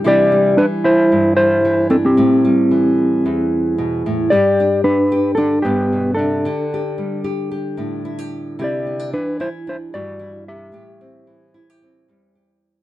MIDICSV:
0, 0, Header, 1, 3, 480
1, 0, Start_track
1, 0, Key_signature, 1, "major"
1, 0, Tempo, 534759
1, 39, Time_signature, 4, 2, 24, 8
1, 11514, End_track
2, 0, Start_track
2, 0, Title_t, "Clean electric guitar"
2, 0, Program_c, 0, 27
2, 58, Note_on_c, 0, 67, 74
2, 69, Note_on_c, 0, 74, 101
2, 495, Note_off_c, 0, 67, 0
2, 514, Note_on_c, 0, 62, 67
2, 520, Note_on_c, 0, 71, 92
2, 547, Note_off_c, 0, 74, 0
2, 580, Note_off_c, 0, 62, 0
2, 583, Note_off_c, 0, 71, 0
2, 758, Note_on_c, 0, 64, 72
2, 765, Note_on_c, 0, 72, 89
2, 1203, Note_off_c, 0, 64, 0
2, 1207, Note_off_c, 0, 72, 0
2, 1225, Note_on_c, 0, 64, 70
2, 1226, Note_on_c, 0, 72, 90
2, 1676, Note_off_c, 0, 64, 0
2, 1708, Note_on_c, 0, 60, 67
2, 1709, Note_off_c, 0, 72, 0
2, 1712, Note_on_c, 0, 69, 74
2, 1754, Note_off_c, 0, 60, 0
2, 1755, Note_off_c, 0, 69, 0
2, 1839, Note_on_c, 0, 60, 60
2, 1847, Note_on_c, 0, 67, 73
2, 3355, Note_off_c, 0, 60, 0
2, 3359, Note_off_c, 0, 67, 0
2, 3862, Note_on_c, 0, 74, 94
2, 3874, Note_on_c, 0, 67, 74
2, 4319, Note_off_c, 0, 67, 0
2, 4342, Note_off_c, 0, 74, 0
2, 4345, Note_on_c, 0, 62, 69
2, 4345, Note_on_c, 0, 71, 86
2, 4795, Note_off_c, 0, 62, 0
2, 4797, Note_off_c, 0, 71, 0
2, 4801, Note_on_c, 0, 69, 81
2, 4829, Note_on_c, 0, 62, 63
2, 5044, Note_off_c, 0, 69, 0
2, 5047, Note_on_c, 0, 67, 81
2, 5053, Note_off_c, 0, 62, 0
2, 5070, Note_on_c, 0, 59, 64
2, 5512, Note_off_c, 0, 67, 0
2, 5516, Note_off_c, 0, 59, 0
2, 5516, Note_on_c, 0, 69, 71
2, 5535, Note_on_c, 0, 62, 57
2, 6457, Note_off_c, 0, 69, 0
2, 6467, Note_off_c, 0, 62, 0
2, 7735, Note_on_c, 0, 67, 59
2, 7754, Note_on_c, 0, 74, 76
2, 8171, Note_off_c, 0, 67, 0
2, 8198, Note_off_c, 0, 74, 0
2, 8199, Note_on_c, 0, 62, 58
2, 8201, Note_on_c, 0, 71, 77
2, 8420, Note_off_c, 0, 62, 0
2, 8440, Note_off_c, 0, 71, 0
2, 8443, Note_on_c, 0, 64, 62
2, 8447, Note_on_c, 0, 72, 79
2, 8507, Note_off_c, 0, 64, 0
2, 8510, Note_off_c, 0, 72, 0
2, 8700, Note_on_c, 0, 72, 75
2, 8703, Note_on_c, 0, 64, 61
2, 8762, Note_off_c, 0, 64, 0
2, 8762, Note_off_c, 0, 72, 0
2, 8922, Note_on_c, 0, 74, 82
2, 8932, Note_on_c, 0, 66, 60
2, 9365, Note_off_c, 0, 74, 0
2, 9371, Note_off_c, 0, 66, 0
2, 9410, Note_on_c, 0, 76, 80
2, 9414, Note_on_c, 0, 67, 67
2, 11051, Note_off_c, 0, 76, 0
2, 11053, Note_off_c, 0, 67, 0
2, 11514, End_track
3, 0, Start_track
3, 0, Title_t, "Nylon-string guitar"
3, 0, Program_c, 1, 24
3, 39, Note_on_c, 1, 48, 74
3, 43, Note_on_c, 1, 52, 61
3, 54, Note_on_c, 1, 55, 58
3, 63, Note_on_c, 1, 62, 63
3, 68, Note_on_c, 1, 64, 67
3, 282, Note_off_c, 1, 55, 0
3, 286, Note_on_c, 1, 55, 63
3, 515, Note_off_c, 1, 52, 0
3, 518, Note_off_c, 1, 48, 0
3, 519, Note_on_c, 1, 52, 63
3, 1004, Note_on_c, 1, 43, 72
3, 1468, Note_off_c, 1, 52, 0
3, 1479, Note_on_c, 1, 52, 59
3, 1694, Note_off_c, 1, 62, 0
3, 1704, Note_on_c, 1, 62, 56
3, 1923, Note_off_c, 1, 62, 0
3, 1930, Note_off_c, 1, 52, 0
3, 1932, Note_off_c, 1, 43, 0
3, 1950, Note_on_c, 1, 45, 73
3, 1958, Note_on_c, 1, 60, 59
3, 2184, Note_off_c, 1, 55, 0
3, 2195, Note_on_c, 1, 55, 61
3, 2432, Note_on_c, 1, 52, 62
3, 2911, Note_off_c, 1, 45, 0
3, 2922, Note_on_c, 1, 40, 68
3, 3396, Note_on_c, 1, 47, 58
3, 3634, Note_off_c, 1, 47, 0
3, 3645, Note_on_c, 1, 45, 65
3, 3844, Note_off_c, 1, 52, 0
3, 3847, Note_off_c, 1, 60, 0
3, 3873, Note_off_c, 1, 40, 0
3, 3876, Note_on_c, 1, 43, 70
3, 3878, Note_off_c, 1, 45, 0
3, 3879, Note_off_c, 1, 64, 0
3, 3882, Note_on_c, 1, 67, 65
3, 4128, Note_on_c, 1, 62, 57
3, 4590, Note_off_c, 1, 67, 0
3, 4594, Note_on_c, 1, 67, 66
3, 4818, Note_off_c, 1, 62, 0
3, 4822, Note_on_c, 1, 62, 65
3, 5059, Note_off_c, 1, 43, 0
3, 5070, Note_on_c, 1, 43, 61
3, 5078, Note_off_c, 1, 55, 0
3, 5082, Note_on_c, 1, 59, 53
3, 5318, Note_on_c, 1, 47, 54
3, 5549, Note_off_c, 1, 47, 0
3, 5553, Note_on_c, 1, 48, 60
3, 5763, Note_off_c, 1, 43, 0
3, 5769, Note_off_c, 1, 59, 0
3, 5791, Note_on_c, 1, 50, 74
3, 5792, Note_off_c, 1, 48, 0
3, 5796, Note_off_c, 1, 67, 0
3, 5800, Note_on_c, 1, 67, 63
3, 6045, Note_off_c, 1, 67, 0
3, 6048, Note_on_c, 1, 67, 66
3, 6265, Note_on_c, 1, 55, 63
3, 6498, Note_off_c, 1, 67, 0
3, 6502, Note_on_c, 1, 67, 67
3, 6742, Note_off_c, 1, 67, 0
3, 6745, Note_on_c, 1, 67, 65
3, 6978, Note_on_c, 1, 45, 62
3, 6981, Note_off_c, 1, 62, 0
3, 6984, Note_on_c, 1, 62, 55
3, 7222, Note_off_c, 1, 67, 0
3, 7226, Note_on_c, 1, 64, 63
3, 7347, Note_off_c, 1, 64, 0
3, 7347, Note_on_c, 1, 67, 52
3, 7681, Note_off_c, 1, 62, 0
3, 7705, Note_off_c, 1, 45, 0
3, 7706, Note_off_c, 1, 67, 0
3, 7709, Note_on_c, 1, 48, 66
3, 7714, Note_on_c, 1, 64, 62
3, 7957, Note_on_c, 1, 59, 55
3, 8073, Note_off_c, 1, 59, 0
3, 8073, Note_on_c, 1, 62, 46
3, 8191, Note_off_c, 1, 48, 0
3, 8191, Note_off_c, 1, 50, 0
3, 8195, Note_on_c, 1, 52, 60
3, 8433, Note_off_c, 1, 64, 0
3, 8437, Note_on_c, 1, 64, 65
3, 8670, Note_off_c, 1, 62, 0
3, 8681, Note_on_c, 1, 62, 55
3, 8919, Note_on_c, 1, 43, 63
3, 8923, Note_off_c, 1, 55, 0
3, 8926, Note_on_c, 1, 55, 56
3, 9146, Note_off_c, 1, 64, 0
3, 9150, Note_on_c, 1, 64, 56
3, 9611, Note_off_c, 1, 43, 0
3, 9612, Note_off_c, 1, 62, 0
3, 9623, Note_on_c, 1, 45, 62
3, 9633, Note_off_c, 1, 64, 0
3, 9637, Note_on_c, 1, 67, 59
3, 9882, Note_on_c, 1, 60, 55
3, 10113, Note_off_c, 1, 52, 0
3, 10117, Note_on_c, 1, 52, 55
3, 10356, Note_off_c, 1, 67, 0
3, 10360, Note_on_c, 1, 64, 64
3, 10499, Note_off_c, 1, 64, 0
3, 10499, Note_on_c, 1, 67, 55
3, 10601, Note_off_c, 1, 60, 0
3, 10612, Note_on_c, 1, 60, 55
3, 10833, Note_off_c, 1, 45, 0
3, 10845, Note_off_c, 1, 55, 0
3, 10846, Note_on_c, 1, 40, 58
3, 10855, Note_on_c, 1, 55, 53
3, 11077, Note_off_c, 1, 67, 0
3, 11088, Note_on_c, 1, 67, 52
3, 11514, Note_off_c, 1, 40, 0
3, 11514, Note_off_c, 1, 52, 0
3, 11514, Note_off_c, 1, 55, 0
3, 11514, Note_off_c, 1, 60, 0
3, 11514, Note_off_c, 1, 67, 0
3, 11514, End_track
0, 0, End_of_file